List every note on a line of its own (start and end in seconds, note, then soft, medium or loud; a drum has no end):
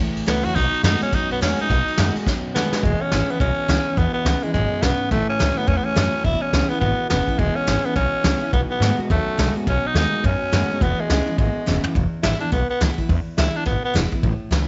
0.00 0.12 C#2 medium
0.00 0.54 E2 medium
0.00 0.25 A2 medium
0.00 0.25 E3 medium
0.15 0.24 A1 medium
0.15 ride medium
0.26 0.40 C#2 loud
0.26 0.54 A2 medium
0.26 0.44 E3 loud
0.26 0.54 F#3 loud
0.26 0.44 A3 loud
0.26 0.46 B3 loud
0.26 0.44 C#4 loud
0.26 0.44 E4 loud
0.26 snare loud
0.26 ride medium
0.44 0.53 E2 medium
0.44 0.56 C#4 medium
0.44 0.55 E4 medium
0.44 0.57 F#4 loud
0.44 ride medium
0.55 0.69 B1 loud
0.55 1.11 B2 loud
0.55 0.82 B2 medium
0.55 0.83 F#3 loud
0.55 0.83 D#4 loud
0.55 kick loud
0.55 ride medium
0.73 muted upright bass stroke medium
0.73 ride medium
0.83 0.97 F#2 medium
0.83 1.11 B2 medium
0.83 1.01 D#3 medium
0.83 1.11 G#3 loud
0.83 1.01 A3 medium
0.83 1.02 B3 loud
0.83 1.00 D#4 loud
0.83 1.01 F#4 loud
0.83 snare loud
0.83 ride medium
1.01 1.13 B3 soft
1.01 1.16 C#4 loud
1.01 1.12 F#4 medium
1.01 muted upright bass stroke medium
1.01 ride medium
1.12 1.26 D#2 medium
1.12 1.68 F#2 loud
1.12 1.40 B2 medium
1.12 1.40 F#3 medium
1.12 1.31 D#4 loud
1.12 kick loud
1.12 ride loud
1.30 1.38 B1 medium
1.30 1.41 B3 medium
1.30 ride medium
1.41 1.54 E2 loud
1.41 1.68 B2 medium
1.41 1.58 D#3 medium
1.41 1.68 G#3 loud
1.41 1.58 A3 medium
1.41 1.58 B3 medium
1.41 1.58 C#4 medium
1.41 1.58 F#4 medium
1.41 snare loud
1.41 ride medium
1.59 1.68 F#2 medium
1.59 1.70 B3 soft
1.59 2.13 D#4 loud
1.59 1.69 F#4 medium
1.59 ride medium
1.69 1.83 B1 loud
1.69 2.25 B2 medium
1.69 1.96 B2 medium
1.69 1.97 F#3 medium
1.69 kick loud
1.69 ride medium
1.87 muted upright bass stroke medium
1.87 ride medium
1.97 2.11 F#2 medium
1.97 2.24 B2 medium
1.97 2.15 D#3 medium
1.97 2.24 G#3 loud
1.97 2.15 A3 medium
1.97 2.15 B3 loud
1.97 2.15 F#4 loud
1.97 snare loud
1.97 ride medium
2.15 2.27 B3 medium
2.15 2.26 F#4 medium
2.15 muted upright bass stroke medium
2.15 ride medium
2.26 2.40 D#2 medium
2.26 2.82 F#2 loud
2.26 2.53 B2 medium
2.26 2.53 F#3 loud
2.26 kick loud
2.26 snare medium
2.45 2.53 B1 medium
2.55 2.69 E2 medium
2.55 2.81 B2 medium
2.55 2.72 D#3 loud
2.55 2.82 G#3 medium
2.55 2.73 A3 medium
2.55 2.85 B3 medium
2.55 2.73 B3 medium
2.55 2.73 F#4 medium
2.55 snare medium
2.72 2.81 F#2 medium
2.72 2.85 B3 medium
2.72 2.84 F#4 medium
2.72 snare medium
2.83 2.95 E1 medium
2.83 3.10 E2 medium
2.83 3.39 E2 medium
2.83 3.10 B2 medium
2.83 3.03 G#3 medium
2.83 kick loud
2.83 open hi-hat medium
3.01 3.33 C#4 medium
3.01 muted upright bass stroke medium
3.11 3.23 G#1 medium
3.11 3.39 E2 medium
3.11 3.39 C#3 loud
3.11 3.29 E3 medium
3.11 3.30 G#3 medium
3.11 3.30 B3 medium
3.11 3.29 E4 medium
3.11 snare loud
3.29 3.40 B3 medium
3.29 3.41 B3 medium
3.29 3.41 E4 medium
3.29 muted upright bass stroke medium
3.40 3.52 B1 medium
3.40 3.67 E2 medium
3.40 3.96 B2 medium
3.40 3.67 B2 loud
3.40 4.00 C#4 loud
3.40 kick loud
3.40 open hi-hat medium
3.58 muted upright bass stroke medium
3.68 3.80 C#2 loud
3.68 3.95 E2 medium
3.68 3.95 C#3 medium
3.68 3.85 E3 medium
3.68 3.86 G#3 medium
3.68 3.86 B3 medium
3.68 3.85 E4 loud
3.68 snare loud
3.86 3.98 B3 soft
3.86 3.97 E4 medium
3.86 muted upright bass stroke medium
3.97 4.09 E2 medium
3.97 4.24 E2 medium
3.97 4.52 E2 medium
3.97 4.24 B2 medium
3.97 4.13 B3 loud
3.97 kick loud
3.97 open hi-hat soft
4.13 4.45 B3 loud
4.13 muted upright bass stroke medium
4.25 4.37 C#2 medium
4.25 4.52 E2 medium
4.25 4.52 C#3 medium
4.25 4.43 E3 medium
4.25 4.43 G#3 medium
4.25 4.44 B3 medium
4.25 4.42 E4 medium
4.25 snare loud
4.43 4.53 G#3 medium
4.43 4.55 B3 soft
4.43 4.54 E4 medium
4.53 4.66 G#1 medium
4.53 4.81 E2 medium
4.53 4.82 F#2 medium
4.53 4.81 B2 medium
4.53 4.84 G#3 loud
4.53 kick loud
4.53 open hi-hat soft
4.82 4.94 B1 loud
4.82 5.09 E2 medium
4.82 5.10 G#2 medium
4.82 5.10 C#3 loud
4.82 5.11 B3 loud
4.82 snare loud
5.00 muted upright bass stroke medium
5.11 5.23 A1 loud
5.11 5.66 A2 medium
5.11 5.38 A2 medium
5.11 5.38 E3 loud
5.11 5.28 A3 loud
5.11 kick loud
5.11 open hi-hat medium
5.29 5.60 C#4 loud
5.39 5.52 C#2 medium
5.39 5.66 A2 medium
5.39 5.56 E3 medium
5.39 5.67 F#3 loud
5.39 5.57 A3 medium
5.39 5.57 C#4 loud
5.39 5.56 E4 loud
5.39 snare loud
5.57 5.70 B3 loud
5.57 5.69 C#4 soft
5.57 5.68 E4 medium
5.57 muted upright bass stroke medium
5.67 5.79 E2 medium
5.67 6.23 E2 loud
5.67 5.95 A2 medium
5.67 5.95 E3 loud
5.67 5.79 C#4 loud
5.67 kick loud
5.67 open hi-hat medium
5.77 5.86 B3 medium
5.85 6.26 C#4 loud
5.85 muted upright bass stroke medium
5.95 6.08 F#2 loud
5.95 6.23 A2 medium
5.95 6.13 E3 medium
5.95 6.23 F#3 loud
5.95 6.13 A3 medium
5.95 6.13 C#4 medium
5.95 6.12 E4 loud
5.95 snare loud
6.13 6.25 C#4 medium
6.13 6.24 E4 medium
6.13 muted upright bass stroke medium
6.24 6.36 E1 loud
6.24 6.51 E2 medium
6.24 6.80 E2 medium
6.24 6.52 B2 loud
6.24 6.43 E4 loud
6.24 kick loud
6.24 open hi-hat medium
6.41 6.71 C#4 loud
6.41 muted upright bass stroke medium
6.53 6.65 C#2 medium
6.53 6.80 E2 medium
6.53 6.80 C#3 loud
6.53 6.71 E3 medium
6.53 6.71 G#3 medium
6.53 6.71 B3 loud
6.53 6.70 E4 medium
6.53 snare loud
6.70 6.80 B3 loud
6.70 6.83 B3 soft
6.70 6.82 E4 medium
6.80 6.93 G#1 loud
6.80 7.08 E2 medium
6.80 7.37 B2 medium
6.80 7.09 B2 medium
6.80 7.08 B3 loud
6.80 kick loud
6.80 open hi-hat medium
7.10 7.22 E1 medium
7.10 7.37 E2 medium
7.10 7.37 C#3 medium
7.10 7.27 E3 loud
7.10 7.28 G#3 medium
7.10 7.40 B3 loud
7.10 7.28 B3 loud
7.10 7.27 E4 loud
7.10 snare loud
7.27 7.40 B3 soft
7.27 7.39 E4 medium
7.27 kick medium
7.39 7.51 E1 medium
7.39 7.65 E2 medium
7.39 7.94 E2 medium
7.39 7.66 B2 medium
7.39 7.57 G#3 loud
7.39 kick loud
7.39 open hi-hat medium
7.56 7.87 C#4 loud
7.56 muted upright bass stroke medium
7.67 7.79 G#1 medium
7.67 7.94 E2 medium
7.67 7.94 C#3 loud
7.67 7.84 E3 medium
7.67 7.84 G#3 medium
7.67 7.84 B3 medium
7.67 7.83 E4 loud
7.67 snare loud
7.84 7.96 B3 medium
7.84 7.95 B3 medium
7.84 7.95 E4 medium
7.84 muted upright bass stroke medium
7.96 8.07 B1 medium
7.96 8.23 E2 medium
7.96 8.51 B2 medium
7.96 8.23 B2 loud
7.96 8.49 C#4 loud
7.96 kick loud
7.96 open hi-hat medium
8.24 8.36 C#2 loud
8.24 8.51 E2 medium
8.24 8.51 C#3 loud
8.24 8.41 E3 medium
8.24 8.41 G#3 medium
8.24 8.42 B3 medium
8.24 8.41 E4 loud
8.24 snare loud
8.42 8.54 B3 soft
8.42 8.53 E4 medium
8.52 8.64 B1 medium
8.52 8.79 B2 medium
8.52 9.08 B2 medium
8.52 8.79 F#3 medium
8.52 8.61 B3 loud
8.52 kick loud
8.52 open hi-hat medium
8.70 8.97 B3 loud
8.70 muted upright bass stroke medium
8.80 8.92 G#2 medium
8.80 9.08 B2 medium
8.80 8.98 D#3 medium
8.80 9.08 G#3 loud
8.80 8.99 A3 medium
8.80 8.99 B3 medium
8.80 8.97 F#4 loud
8.80 snare loud
8.99 9.10 B3 medium
8.99 9.10 F#4 medium
8.99 muted upright bass stroke medium
9.10 9.22 D#2 loud
9.10 9.65 F#2 loud
9.10 9.37 B2 medium
9.10 9.37 F#3 loud
9.10 9.53 A3 loud
9.10 kick loud
9.10 open hi-hat medium
9.27 muted upright bass stroke medium
9.38 9.50 B1 loud
9.38 9.65 B2 medium
9.38 9.55 D#3 medium
9.38 9.65 G#3 loud
9.38 9.56 A3 loud
9.38 9.56 B3 medium
9.38 9.54 F#4 medium
9.38 snare loud
9.56 9.67 B3 soft
9.56 9.67 F#4 medium
9.56 muted upright bass stroke medium
9.66 9.79 B1 medium
9.66 9.93 B2 medium
9.66 10.22 B2 medium
9.66 9.94 F#3 medium
9.66 9.88 C#4 loud
9.66 kick loud
9.66 open hi-hat soft
9.87 9.97 D#4 loud
9.94 10.06 D#2 medium
9.94 10.22 B2 medium
9.94 10.12 D#3 medium
9.94 10.22 G#3 loud
9.94 10.12 A3 medium
9.94 10.13 B3 medium
9.94 10.27 D#4 loud
9.94 10.11 F#4 medium
9.94 snare loud
10.12 10.24 B3 soft
10.12 10.23 F#4 medium
10.24 10.35 F#2 medium
10.24 10.79 F#2 loud
10.24 10.50 B2 medium
10.24 10.51 F#3 loud
10.24 10.84 C#4 loud
10.24 kick loud
10.24 open hi-hat medium
10.42 muted upright bass stroke medium
10.52 10.64 F#2 loud
10.52 10.79 B2 medium
10.52 10.69 D#3 medium
10.52 10.79 G#3 medium
10.52 10.69 A3 loud
10.52 10.70 B3 loud
10.52 10.69 F#4 loud
10.52 snare loud
10.70 10.82 B3 medium
10.70 10.81 F#4 medium
10.70 muted upright bass stroke medium
10.81 10.92 E1 loud
10.81 11.08 E2 medium
10.81 11.36 E2 loud
10.81 11.08 B2 loud
10.81 11.02 B3 loud
10.81 kick loud
10.81 open hi-hat medium
10.99 11.38 G#3 loud
10.99 muted upright bass stroke medium
11.10 11.21 C#2 medium
11.10 11.36 E2 medium
11.10 11.36 C#3 loud
11.10 11.27 E3 medium
11.10 11.27 G#3 medium
11.10 11.27 B3 medium
11.10 11.26 E4 loud
11.10 snare loud
11.27 11.39 B3 soft
11.27 11.38 E4 medium
11.27 muted upright bass stroke medium
11.38 11.50 G#1 loud
11.38 11.65 E2 medium
11.38 11.93 B2 medium
11.38 11.65 B2 medium
11.38 11.82 G#3 medium
11.38 kick loud
11.38 open hi-hat medium
11.56 muted upright bass stroke medium
11.66 11.79 E1 loud
11.66 11.93 E2 medium
11.66 11.93 C#3 loud
11.66 11.83 E3 medium
11.66 11.84 G#3 medium
11.66 11.84 B3 loud
11.66 11.84 E4 loud
11.66 snare medium
11.84 11.96 B3 soft
11.84 11.95 E4 medium
11.84 floor tom medium
11.95 12.07 E1 loud
11.95 12.51 E2 loud
11.95 kick loud
11.95 open hi-hat medium
12.13 muted upright bass stroke medium
12.23 12.35 G#1 medium
12.23 12.41 E3 medium
12.23 12.41 G#3 loud
12.23 12.41 B3 loud
12.23 12.40 E4 loud
12.23 12.39 E4 loud
12.23 snare loud
12.40 12.53 B3 medium
12.40 12.52 D4 medium
12.40 12.52 E4 medium
12.52 12.64 B1 medium
12.52 13.07 B2 loud
12.52 12.69 B3 medium
12.52 kick loud
12.52 open hi-hat medium
12.70 12.81 B3 medium
12.81 12.92 C#2 loud
12.81 12.98 E3 loud
12.81 12.98 G#3 medium
12.81 12.98 B3 loud
12.81 12.97 E4 loud
12.81 snare loud
12.98 13.10 B3 soft
12.98 13.09 E4 medium
12.98 muted upright bass stroke medium
12.98 kick medium
13.09 13.21 E2 loud
13.09 13.64 E2 loud
13.09 kick loud
13.09 open hi-hat medium
13.27 muted upright bass stroke medium
13.38 13.49 C#2 loud
13.38 13.55 E3 medium
13.38 13.55 G#3 medium
13.38 13.55 B3 medium
13.38 13.58 E4 loud
13.38 13.53 E4 medium
13.38 snare loud
13.54 13.66 B3 soft
13.54 13.66 D4 medium
13.54 13.66 E4 medium
13.66 13.78 G#1 medium
13.66 14.21 B2 loud
13.66 13.83 B3 medium
13.66 kick loud
13.66 open hi-hat medium
13.83 13.95 B3 loud
13.83 muted upright bass stroke medium
13.94 14.06 E1 loud
13.94 14.11 E3 loud
13.94 14.12 G#3 medium
13.94 14.12 B3 loud
13.94 14.11 E4 loud
13.94 snare loud
14.12 14.24 B3 medium
14.12 14.23 E4 medium
14.12 muted upright bass stroke medium
14.12 kick medium
14.23 14.35 A1 loud
14.23 14.68 A2 medium
14.23 kick loud
14.23 open hi-hat medium
14.40 muted upright bass stroke medium
14.51 14.63 C#2 medium
14.51 14.68 E3 medium
14.51 14.68 A3 medium
14.51 14.68 C#4 medium
14.51 14.67 E4 loud
14.51 snare loud